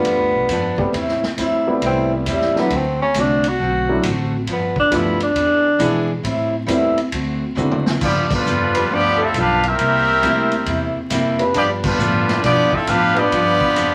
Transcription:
Already playing: G3 A3 B3 D4 F4
0.04 E2 G2 F3 B3 D4, kick, ride
0.18 D2
0.33 B1
0.48 F2 G2 F3 B3 D4, kick, hi-hat pedal, ride
0.77 G3 A3 B3 C4 G4, muted upright bass stroke, kick
0.93 E2 A2 G3 C4 E4, kick, ride
1.09 snare
1.22 muted upright bass stroke, snare
1.38 D2 A2 G3 C4 E4, kick, hi-hat pedal, ride
1.67 G3 A3 B3 C4 E4
1.81 C2 A2 G3 C4 E4, kick, ride
1.86 C4
2.14 E3
2.26 E2 A2 G3 C4 E4, kick, hi-hat pedal, ride
2.32 G3
2.42 snare
2.56 F#3 A3 B3 C4 D4 E4, snare
2.70 D2 D3 A3 C4 F#4, kick, ride
2.76 C4
3.02 C#4
3.14 C2 D3 A3 C4 F#4, kick, hi-hat pedal, ride
3.20 D4
3.44 ride
3.48 F#4
3.58 B1 D3 A3 C4 F#4, kick
3.89 F#3 A3 C4 D4 E4
4.02 A1 D3 A3 C4 F#4, kick, hi-hat pedal, ride
4.47 G1 G2 F3 B3 D4, kick, ride
4.52 B3
4.76 D4, kick
4.91 D2 G2 F3 G3 A3 B3 D4 E4 F4, kick, hi-hat pedal, ride
5.20 D4, ride
5.35 E2 E3 B3 D4 G#4, kick, ride
5.79 B2 E3 G#3 B3 D4 E4 G#4, kick, hi-hat pedal, ride
6.23 A2 G3 C4 E4, kick, ride
6.67 E2 A2 G3 A3 B3 C4 E4, kick, hi-hat pedal, ride
6.97 muted upright bass stroke, ride
7.12 D2 D3 A3 C4 F#4, kick, ride
7.55 F#2 D3 F#3 A3 C4 D4 E4 F#4, hi-hat pedal, mid tom
7.71 mid tom
7.86 snare
8.00 G2 F3 B3 D4 F4 G4 D5, kick, crash
8.31 D3 F3 G3 B3 D4 F4 B4, kick, crash
8.45 F2 G2 F3 B3 D4, hi-hat pedal
8.74 G3 D4 F4 B4, ride
8.89 D2 G2 F3 B3 D4, kick
8.94 B3 F4 G4 D5
9.18 G3 D4 F4 A4
9.22 C4 E4 F4 A4 E5
9.33 B1 G2 F3 B3 D4 F4, kick, hi-hat pedal, ride
9.39 D4 G4 B4 F5
9.63 G3 A#3 E4 G4 A#4 E5, ride
9.68 C4
9.77 C2 C3 G3 A#3 E4, kick, ride
10.21 D2 C3 G3 A#3 E4, kick, hi-hat pedal, ride
10.51 ride
10.65 E2 C3 G3 A#3 E4, kick, ride
10.95 muted upright bass stroke
11.10 F2 C3 G3 A#3 E4, kick, hi-hat pedal, ride
11.38 G3 D4 F4 B4, ride
11.53 G2 F3 B3 D4 F4 G4, kick, ride
11.58 D5
11.82 D3 F3 G3 B3 D4 F4 B4, kick, crash
11.98 G2 A2 F3 B3 D4, hi-hat pedal
12.29 snare, ride
12.41 G2 B2 F3 B3 D4 G4, kick, snare, ride
12.45 D4 F4 D5
12.72 C4 E4 F4 A4 E5, muted upright bass stroke, kick
12.87 G2 A2 F3 B3 D4 F4 G4 B4 F5, kick, hi-hat pedal, ride
13.15 F3 G3 B3 D4 F4 G4 B4 D5, ride
13.31 G2 F3 B3 D4, kick, ride
13.61 kick
13.74 F2 G2 F3 B3 D4, kick, hi-hat pedal, ride

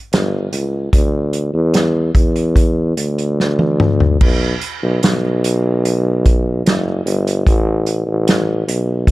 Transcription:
0.12 G1, snare, closed hi-hat
0.52 C#2, closed hi-hat
0.93 D2, kick, closed hi-hat
1.33 closed hi-hat
1.54 E2
1.74 snare, closed hi-hat
2.15 E2, kick, closed hi-hat
2.36 closed hi-hat
2.56 kick, closed hi-hat
2.97 D2, closed hi-hat
3.18 closed hi-hat
3.40 snare
3.59 high tom
3.80 mid tom
4.00 floor tom
4.21 B1, kick, crash
4.61 closed hi-hat
4.82 B1
5.03 B1, snare, closed hi-hat
5.44 closed hi-hat
5.85 closed hi-hat
6.26 kick, closed hi-hat
6.65 F#1, snare, closed hi-hat
7.05 G1, closed hi-hat
7.27 closed hi-hat
7.47 A1, kick, closed hi-hat
7.86 closed hi-hat
8.06 A1
8.28 snare, closed hi-hat
8.67 B1, closed hi-hat
9.07 kick, closed hi-hat

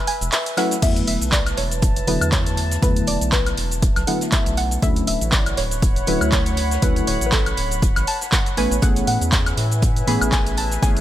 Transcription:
Already playing: B4 E5 G#5
0.07 G#5, closed hi-hat, open hi-hat
0.21 E1, closed hi-hat, cabasa
0.32 E5, snare, clap, closed hi-hat, open hi-hat, cabasa
0.46 closed hi-hat, cabasa
0.57 F#3 A3 C#4 E4 B4 F#5, snare, closed hi-hat, open hi-hat, high woodblock
0.71 snare, closed hi-hat, cabasa
0.82 E2 D3 F#3 A3 B3 E4 E5, kick, closed hi-hat, crash, cabasa
0.96 closed hi-hat, cabasa
1.02 A5
1.07 E1 E5, closed hi-hat, open hi-hat
1.21 B1, closed hi-hat, cabasa
1.32 D5, kick, snare, clap, closed hi-hat, cabasa
1.46 snare, closed hi-hat, cabasa, high woodblock
1.57 E1 C#5, snare, closed hi-hat, open hi-hat
1.71 closed hi-hat, cabasa
1.82 kick, closed hi-hat, cabasa
1.96 closed hi-hat, cabasa
2.07 E1 D3 F#3 A3 B3 E4 B4, closed hi-hat, open hi-hat
2.21 E2, closed hi-hat, cabasa, high woodblock
2.32 C#5, kick, snare, clap, closed hi-hat, open hi-hat, cabasa
2.46 closed hi-hat, cabasa
2.57 closed hi-hat, open hi-hat
2.71 snare, closed hi-hat, cabasa
2.82 E2 D3 F#3 A3 B3 E4 B4, kick, closed hi-hat, cabasa
2.96 closed hi-hat, cabasa
3.07 E1 D5, closed hi-hat, open hi-hat
3.21 B1, closed hi-hat, cabasa
3.32 B4, kick, snare, clap, closed hi-hat, cabasa
3.46 snare, closed hi-hat, cabasa, high woodblock
3.57 E1, closed hi-hat, open hi-hat
3.71 closed hi-hat, cabasa
3.82 kick, closed hi-hat, cabasa
3.96 B1, snare, closed hi-hat, cabasa, high woodblock
4.07 D3 F#3 A3 B3 E4 F#5, closed hi-hat, open hi-hat
4.21 snare, closed hi-hat, cabasa
4.32 E5, kick, snare, clap, closed hi-hat, cabasa
4.46 B1, closed hi-hat, cabasa
4.57 F#5, closed hi-hat, open hi-hat
4.71 closed hi-hat, cabasa
4.82 D2 D3 F#3 A3 C#4 E4 C#5 E5, kick, closed hi-hat, cabasa
4.93 F#5, closed hi-hat
4.97 cabasa
5.07 D1 E5 B5, closed hi-hat, open hi-hat
5.21 A1, closed hi-hat, cabasa
5.32 D5, kick, snare, clap, closed hi-hat, cabasa
5.46 snare, closed hi-hat, cabasa, high woodblock
5.57 D1 C#5, snare, closed hi-hat, open hi-hat
5.71 closed hi-hat, cabasa
5.82 kick, closed hi-hat, cabasa
5.96 closed hi-hat, cabasa
6.07 D1 D3 F#3 A3 C#4 E4 B4, closed hi-hat, open hi-hat
6.21 D2, closed hi-hat, cabasa, high woodblock
6.32 C#5, kick, snare, clap, closed hi-hat, open hi-hat, cabasa
6.46 closed hi-hat, cabasa
6.57 closed hi-hat, open hi-hat
6.71 snare, closed hi-hat, cabasa
6.82 D2 D3 F#3 A3 C#4 E4 B4, kick, closed hi-hat, cabasa
6.96 closed hi-hat, cabasa
7.07 D1 C#5, closed hi-hat, open hi-hat
7.21 A1, closed hi-hat, cabasa
7.26 B4
7.32 A4, kick, snare, clap, closed hi-hat, cabasa
7.46 snare, closed hi-hat, cabasa, high woodblock
7.57 D1, closed hi-hat, open hi-hat
7.71 closed hi-hat, cabasa
7.82 kick, closed hi-hat, cabasa
7.96 A1, snare, closed hi-hat, cabasa, high woodblock
8.07 A5, closed hi-hat, open hi-hat
8.21 snare, closed hi-hat, cabasa
8.32 F#5, kick, snare, clap, closed hi-hat, cabasa
8.46 closed hi-hat, cabasa
8.57 A1 E3 A3 B3 C#4 B4 G#5, closed hi-hat, open hi-hat
8.71 A1, closed hi-hat, cabasa
8.82 A1 E3 A3 B3 C#4 G#4 F#5, kick, closed hi-hat, cabasa
8.90 E5
8.96 closed hi-hat, cabasa
9.07 A2 F#5 G#5, closed hi-hat, open hi-hat
9.21 E2, closed hi-hat, cabasa
9.32 kick, snare, clap, closed hi-hat, cabasa
9.46 snare, closed hi-hat, cabasa, high woodblock
9.57 A2, snare, closed hi-hat, open hi-hat
9.71 closed hi-hat, cabasa
9.82 kick, closed hi-hat, cabasa
9.96 closed hi-hat, cabasa
10.07 A2 E3 A3 B3 C#4 G#4 B5, closed hi-hat, open hi-hat
10.21 A1, closed hi-hat, cabasa, high woodblock
10.32 G#5, kick, snare, clap, closed hi-hat, open hi-hat, cabasa
10.46 closed hi-hat, cabasa
10.57 A5, closed hi-hat, open hi-hat
10.72 snare, closed hi-hat, cabasa
10.82 A1 E3 A3 B3 C#4 G#4 G#5, kick, closed hi-hat, cabasa
10.97 closed hi-hat, cabasa

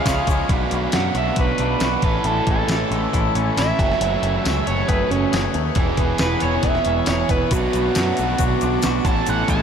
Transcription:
Already playing: G#4 C#5 F5 C#6
0.06 C#2 C#3 F3 G#3 C#4 F4 G#4, kick, snare, closed hi-hat, tambourine, shaker
0.27 C#2 C#3 F3 G#3 C#4 F4 G#4, kick, closed hi-hat, shaker
0.49 B1 B2 F#3 B3 D4 F#4 B4 D5 F#5 B5, kick, closed hi-hat
0.71 B1 A3, closed hi-hat
0.92 F#2 F#3 F#5, snare, closed hi-hat, tambourine
1.15 B1 A3 E5, closed hi-hat
1.36 B1 F#4, kick, closed hi-hat
1.40 B4
1.58 B1 D4, closed hi-hat
1.80 B1 F#4, snare, closed hi-hat, tambourine
2.02 A1 A2 E3 C#4 A4 B4 E5 G#5 C#6, kick, closed hi-hat
2.24 A1 A2 A4, closed hi-hat
2.47 A1 G#3 A4, kick, closed hi-hat
2.68 A1 E3, snare, closed hi-hat, tambourine
2.91 A1 G#3, closed hi-hat
3.13 A1 E4, kick, closed hi-hat
3.35 A1 C#4, closed hi-hat
3.57 A1 E4 E5, snare, closed hi-hat, tambourine
3.78 F#1 F#2 C#3 F#3 A3 C#4 F#5 C#6, kick, closed hi-hat
3.92 snare
4.00 F#1 F#3, closed hi-hat
4.22 F#1 A3, closed hi-hat
4.43 C#2 F#3 E5, snare, closed hi-hat, tambourine
4.66 F#1 A3 C#5, closed hi-hat
4.88 F#1 G#4 B4, kick, closed hi-hat
5.10 F#1 C#4, closed hi-hat
5.32 F#1 G#4, snare, closed hi-hat, tambourine
5.54 D#2 A3, closed hi-hat
5.75 E1 E2 B2 E3 B3 E4 G#4 B4 E5, kick, closed hi-hat
5.97 E1 B3, kick, closed hi-hat
6.18 E1 E3 B4, snare, closed hi-hat, tambourine
6.40 E1 B3 C#5, closed hi-hat
6.63 E1 G#4 E5, kick, closed hi-hat
6.75 snare
6.85 E1 C#4, closed hi-hat
7.06 E1 G#4 C#5, snare, closed hi-hat, tambourine
7.28 E1 B3 B4, kick, closed hi-hat
7.51 B1 B2 F#3 B3 D4 F#4 F#5 A5 D6, kick, closed hi-hat, shaker
7.72 B1 A3, closed hi-hat, shaker
7.95 F#2 F#3, snare, closed hi-hat, tambourine, shaker
8.17 B1 A3, closed hi-hat, shaker
8.38 B1 F#4, kick, closed hi-hat, shaker
8.61 B1 D4, closed hi-hat, shaker
8.82 B1 F#4, snare, closed hi-hat, tambourine, shaker
9.04 A1 A2 E3 C#4 A4 E5 G#5 A5 C#6, kick, closed hi-hat, shaker
9.26 A1 A2 F#5, closed hi-hat, shaker
9.47 A1 G#3 A5, kick, closed hi-hat, shaker

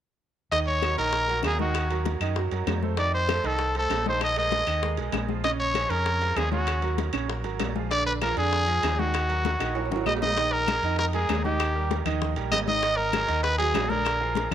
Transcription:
0.52 D#2 D#3 D#4 D#5, high bongo, high conga, high timbale
0.67 C#5, high conga
0.82 F#3 F#4 A#4, high bongo, high conga, high timbale, low timbale, claves
0.97 A#1 D#3 D#4 A#4 D#5, high bongo, high conga, high timbale
1.13 high bongo, high conga
1.28 F#3 F#4 A#4, high bongo, high conga, high timbale
1.43 D#2 G#4, high bongo, low bongo, high conga, high timbale, low timbale, claves
1.59 D#3 D#4 F#4 D#5, high bongo, high conga
1.74 high bongo, high timbale, claves
1.90 F#3 F#4 A#4, high conga, high timbale
2.05 high bongo, high conga, high timbale, low timbale
2.20 F#2 D#3 D#4 D#5, high bongo, high conga, high timbale, claves
2.36 F#3 F#4 A#4, high bongo, high conga
2.51 F#2 F#3 F#4 A#4, high bongo, high conga, high timbale
2.66 F2, high bongo, low bongo, high conga, high timbale, low timbale, claves
2.82 A3 A4 C5, high bongo, high conga
2.97 D#3 D#4 D5 D#5, high bongo, high timbale
3.14 C5, high conga
3.28 A3 A4 C5, high bongo, high conga, high timbale, low timbale, claves
3.44 C2 D#3 D#4 A4 D#5, high bongo, high conga, high timbale
3.59 high bongo, high conga
3.75 A3 A4 C5, high bongo, high conga, high timbale
3.90 A#1, high bongo, low bongo, high conga, high timbale, low timbale, claves
4.06 D#3 D#4 C5 D#5, high bongo, high conga
4.21 D#5, high bongo, high conga, high timbale, claves
4.36 G#3 G#4 A#4 D#5, high conga, high timbale
4.51 high bongo, high conga, high timbale, low timbale
4.67 D#2 D#3 D#4 D#5, high bongo, high conga, high timbale, claves
4.82 G#3 G#4 A#4, high bongo, high conga
4.97 B1 G#3 G#4 A#4, high bongo, high conga, high timbale
5.12 A#1, high bongo, low bongo, high conga, high timbale, low timbale, claves
5.29 F3 F4 G#4, high bongo, high conga
5.44 C#3 C#4 C#5 D#5, high bongo, high conga, high timbale
5.59 C#5, high conga
5.74 F3 F4 G#4, high bongo, high conga, high timbale, low timbale, claves
5.89 F2 C#3 C#4 A#4 C#5, high bongo, high conga, high timbale
6.06 high bongo, high conga
6.21 F3 F4 G#4, high bongo, high conga, high timbale
6.36 D#2 G#4, high bongo, low bongo, high conga, high timbale, low timbale, claves
6.52 C#3 C#4 F#4 C#5, high bongo, high conga
6.67 high bongo, high timbale, claves
6.82 F#3 F#4 A#4, high conga, high timbale
6.98 high bongo, high conga, high timbale, low timbale
7.13 A#1 C#3 C#4 C#5, high bongo, high conga, high timbale, claves
7.28 F#3 F#4 A#4, high bongo, high conga
7.44 G#1 F#3 F#4 A#4, high bongo, high conga, high timbale
7.60 A#1, high bongo, low bongo, high conga, high timbale, low timbale, claves
7.76 F3 F4 G#4, high bongo, high conga
7.91 D3 D4 D5, high bongo, high conga, high timbale
8.07 B4, high conga
8.21 F3 F4 G#4 A#4, high bongo, high conga, high timbale, low timbale, claves
8.37 F2 D3 D4 G#4 D5, high bongo, high conga, high timbale
8.53 high bongo, high conga
8.67 F3 F4 G#4, high bongo, high conga, high timbale
8.83 D#2, high bongo, low bongo, high conga, high timbale, low timbale, claves
8.98 D#3 D#4 F#4 D#5, high bongo, high conga
9.14 high bongo, high conga, high timbale, claves
9.29 F#3 F#4 A#4, high conga, high timbale
9.45 high bongo, high conga, high timbale, low timbale
9.59 A#1 D#3 D#4 D#5, high bongo, high conga, high timbale, claves
9.75 F#3 F#4 A#4, high conga, high timbale
9.86 high timbale
9.91 G#1 F#3 F#4 A#4, low bongo, high conga
9.96 high timbale
10.06 A#1 D#5, high conga, low timbale, claves
10.17 low timbale
10.22 G#3 G#4 A#4 D#5, low bongo, high conga
10.26 low timbale
10.37 D#3 D#4 D#5, high bongo, high timbale
10.53 A#4, high conga
10.67 G#3 G#4 A#4, high bongo, high conga, high timbale, low timbale, claves
10.82 F2 D#3 D#4 D#5, high conga, high timbale
10.99 A#4, high bongo, high conga
11.13 G#3 G#4 A#4, high bongo, high conga, high timbale
11.29 D#2, high bongo, low bongo, high conga, high timbale, low timbale, claves
11.45 D#3 D#4 G4 D#5, high bongo, high conga
11.60 high bongo, high timbale, claves
11.75 G3 G4 A#4, high conga
11.91 high bongo, high conga, high timbale, low timbale
12.05 D#2 D#3 D#4 D#5, low conga, high timbale, claves
12.22 high bongo, high conga, low conga
12.36 A#1 G3 G4 A#4, high bongo, high conga, high timbale
12.51 G#1 D#5, high bongo, low bongo, high conga, high timbale, low timbale, claves
12.67 D#3 D#4 D#5, high bongo, high conga
12.82 D#3 D#4 D#5, high bongo, high timbale
12.97 A#4, high conga
13.13 F#3 F#4 G#4, high bongo, high conga, high timbale, low timbale, claves
13.28 D#2 D#3 D#4 D#5, high conga, high timbale
13.43 B4, high bongo, high conga
13.58 F#3 F#4 G#4, high bongo, high conga, high timbale
13.74 A#1, high bongo, low bongo, high conga, high timbale, low timbale, claves
13.90 D3 D4 A#4 D5, high bongo, high conga
14.05 high bongo, high conga, high timbale, claves
14.20 F3 F4 G#4, high conga
14.35 high bongo, high conga, high timbale, low timbale
14.51 F2, low conga

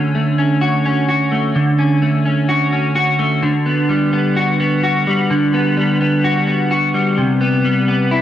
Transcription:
Already playing: D3 A3 C#4 F#4
0.15 A3
0.38 C#4
0.61 F#4
0.86 C#4
1.08 F#4
1.32 A3
1.55 D3
1.79 C#4
2.02 A3
2.25 C#4
2.49 F#4
2.73 C#4
2.95 F#4
3.19 A3
3.42 D3
3.66 B3
3.89 G3
4.13 B3
4.37 F#4
4.60 B3
4.83 F#4
5.07 G3
5.30 D3
5.54 B3
5.77 G3
6.01 B3
6.24 F#4
6.47 B3
6.71 F#4
6.94 G3
7.18 C3
7.41 B3
7.65 G3
7.88 B3
8.11 E4

